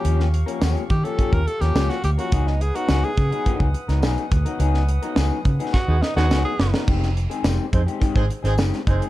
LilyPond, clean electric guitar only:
\new Staff \with { instrumentName = "Clean electric guitar" } { \time 4/4 \key des \lydian \tempo 4 = 106 <f bes des' g'>16 r8 <f bes des' bes'>16 <f bes des' g'>16 r8 <f bes des' g'>16 <f bes des' g'>16 r8 <f bes des' bes'>16 <f bes des' g'>16 r8 <f bes des' bes'>16 | <ges ces' ees' aes'>16 r8 <ges ces' ees' bes'>16 <ges ces' ees' aes'>16 r8 <ges ces' ees' aes'>16 <ges ces' ees' aes'>16 r8 <ges ces' ees' bes'>16 <ges ces' ees' aes'>16 r8 <ges ces' ees' bes'>16 | <ges ces' ees' aes'>16 r8 <ges ces' ees' bes'>16 <ges ces' ees' aes'>16 r8 <ges ces' ees' aes'>16 r8. <ges ces' ees' bes'>16 <ges ces' ees' aes'>16 r8 <ges ces' ees' bes'>16 | <ees aes c' g'>16 r8 <ees aes c' aes'>16 <ees aes c' g'>16 r8 <ees aes c' g'>16 <ees aes c' g'>16 r8 <ees aes c' aes'>16 <ees aes c' g'>16 r8 <ees aes c' aes'>16 | }